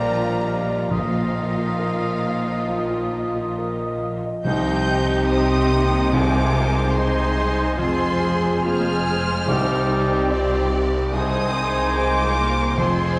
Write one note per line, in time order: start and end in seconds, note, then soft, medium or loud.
0.00 0.90 A#1 medium
0.00 0.87 A#2 medium
0.00 0.90 A#2 medium
0.00 0.91 A#2 medium
0.00 0.23 F3 medium
0.00 0.88 F3 medium
0.00 0.89 G3 medium
0.00 0.88 A#3 medium
0.00 0.45 A#3 medium
0.00 0.87 D4 medium
0.00 0.89 F4 medium
0.00 0.90 F4 medium
0.00 0.94 F4 medium
0.00 1.56 F4 medium
0.00 0.92 G4 medium
0.00 0.02 A#4 medium
0.00 2.00 A#4 medium
0.00 0.37 A#4 medium
0.00 0.24 D5 medium
0.00 0.90 D5 medium
0.00 0.95 D5 medium
0.00 0.45 D#5 medium
0.00 0.88 F5 medium
0.00 0.94 F5 medium
0.00 2.23 F5 medium
0.00 0.91 A#5 loud
0.24 0.67 F3 medium
0.24 0.60 D5 medium
0.45 1.34 A#3 medium
0.45 0.68 D#5 soft
0.67 1.12 F3 medium
0.67 0.90 D5 medium
0.90 4.20 A#1 medium
0.90 2.20 A#2 loud
0.90 2.65 A#2 medium
0.90 4.48 A#2 medium
0.90 4.20 A#2 medium
0.90 4.07 D#3 medium
0.90 4.20 F3 medium
0.90 4.20 A#3 medium
0.90 4.20 D#4 medium
0.90 4.11 F4 medium
0.90 4.20 F4 medium
0.90 4.08 F4 medium
0.90 3.52 A#4 medium
0.90 4.07 D#5 medium
0.90 3.57 F5 medium
1.12 3.34 F3 medium
1.12 1.48 F4 medium
1.35 1.71 D#5 medium
1.57 1.93 F4 soft
1.57 4.48 F4 soft
1.79 2.15 A#4 medium
1.79 2.90 D#5 medium
2.02 2.37 D#5 soft
2.23 2.46 F5 medium
2.23 4.48 F5 medium
2.45 2.82 D#5 medium
2.69 3.04 F3 medium
2.69 4.48 A#4 medium
2.90 3.26 F4 medium
2.90 6.82 D#5 medium
3.12 3.56 A#3 medium
3.12 3.48 D#5 medium
3.35 3.77 F3 medium
3.35 3.70 F4 medium
3.57 3.99 A#3 medium
3.57 3.93 A#4 medium
3.78 4.21 F3 medium
3.78 4.15 D#5 medium
4.01 4.48 A#3 medium
4.01 4.24 F5 soft
4.22 4.48 F3 medium
4.22 4.46 D#5 medium
4.43 7.74 C2 medium
4.43 6.10 C2 medium
4.43 6.11 C3 loud
4.43 5.67 C3 loud
4.43 7.74 C3 loud
4.43 7.74 D#3 medium
4.43 5.26 C4 medium
4.43 5.26 D#4 loud
4.43 4.85 D#4 medium
4.43 6.09 G4 medium
4.43 5.25 C5 medium
4.43 5.26 D#5 medium
4.43 5.26 G5 medium
4.43 5.26 G6 loud
4.73 6.16 G3 medium
4.89 5.30 D#4 medium
5.29 5.72 C4 medium
5.29 6.11 D#4 medium
5.29 6.12 D#4 medium
5.29 6.10 D#4 medium
5.29 5.83 C5 medium
5.29 6.11 C5 medium
5.29 6.10 C5 medium
5.29 6.11 D#5 medium
5.29 6.15 G5 medium
5.29 6.13 D#6 loud
5.73 6.13 A#3 medium
5.84 6.94 C5 medium
6.12 7.74 C2 medium
6.12 7.81 C3 medium
6.12 7.33 C3 loud
6.12 7.79 G#3 medium
6.12 6.93 D#4 medium
6.12 6.96 F4 medium
6.12 9.48 G#4 medium
6.12 6.54 G#4 medium
6.12 6.95 C5 medium
6.12 6.93 C5 medium
6.12 6.95 G#5 medium
6.12 6.95 D6 loud
6.40 9.51 G#3 medium
6.55 6.96 A#4 medium
6.68 7.81 D#4 medium
6.94 7.76 D#4 medium
6.94 7.74 D#4 medium
6.94 7.36 D#4 medium
6.94 7.76 C5 medium
6.94 7.49 C5 medium
6.94 7.77 C5 medium
6.94 7.75 C5 medium
6.94 7.78 D#5 medium
6.94 7.77 G#5 medium
6.94 7.77 C6 loud
7.38 7.78 D#4 loud
7.76 9.45 F1 medium
7.76 9.45 F2 loud
7.76 9.45 F2 medium
7.76 9.48 F3 medium
7.76 9.52 F3 medium
7.76 8.65 C4 medium
7.76 8.62 F4 medium
7.76 8.22 F4 medium
7.76 8.63 G#4 medium
7.76 8.63 C5 medium
7.76 8.62 G#5 medium
7.76 8.63 C6 loud
8.07 9.52 F4 medium
8.22 8.64 G#4 medium
8.62 9.07 A#3 medium
8.62 9.48 F4 medium
8.62 9.44 F4 medium
8.62 9.20 G#4 medium
8.62 9.47 G#4 loud
8.62 9.49 G#4 medium
8.62 9.49 C5 medium
8.62 10.27 C5 loud
8.62 9.45 C5 medium
8.62 9.51 G#5 medium
8.62 10.72 F6 loud
8.93 9.52 F5 medium
9.08 9.48 G#3 medium
9.46 12.78 C2 loud
9.46 12.78 C2 medium
9.46 11.09 C2 medium
9.46 10.68 C3 loud
9.46 11.13 C3 medium
9.46 12.74 D#3 medium
9.46 11.12 C4 loud
9.46 10.84 D#4 medium
9.46 10.31 D#4 medium
9.46 11.13 G4 medium
9.46 9.89 G4 medium
9.46 10.85 D5 loud
9.46 10.86 G5 medium
9.77 11.17 G3 medium
9.91 11.11 G4 medium
10.30 11.09 D#4 medium
10.30 10.72 F4 medium
10.30 11.09 D5 medium
10.30 10.85 D5 medium
10.30 11.11 D5 medium
10.73 11.14 G4 medium
10.86 11.17 D5 medium
11.11 12.74 C2 medium
11.11 12.82 C3 loud
11.11 11.94 C4 medium
11.11 12.80 D#4 loud
11.11 11.53 D#4 medium
11.11 13.19 G#4 medium
11.11 11.94 G#4 medium
11.11 12.74 C5 medium
11.11 11.95 C5 medium
11.11 12.74 G#5 loud
11.11 11.92 D#6 loud
11.41 13.05 G#3 medium
11.55 11.95 D#4 medium
11.69 12.82 D#4 medium
11.96 12.36 G#3 medium
11.96 12.74 D#4 medium
11.96 12.78 F4 medium
11.96 12.79 A#4 medium
11.96 12.75 C5 medium
11.96 12.77 C5 medium
11.96 12.50 C5 medium
11.96 12.78 D6 loud
12.24 13.19 G#4 medium
12.38 12.79 A#3 medium
12.52 13.19 C5 medium
12.78 13.19 F1 loud
12.78 13.19 F2 medium
12.78 13.19 F3 medium
12.78 13.19 C4 medium
12.78 13.19 F4 medium
12.78 13.19 G#4 medium
12.78 13.19 C5 loud
12.78 13.19 C5 medium
12.78 13.19 G#5 loud
12.78 13.19 C6 loud
13.07 13.19 G#3 medium